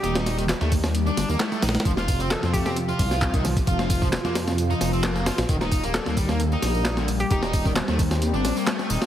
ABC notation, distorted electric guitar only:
X:1
M:4/4
L:1/16
Q:1/4=132
K:Eblyd
V:1 name="Distorted electric guitar"
E E2 E, z A, z3 D2 B, A,2 E z | F, F2 C E, C A, C z F4 E, z2 | F F2 F, z B, z3 E2 C B,2 F z | E, E2 B, D, B, G, B, z E4 D, z2 |
E E2 E, z A, z3 D2 B, A,2 E z |]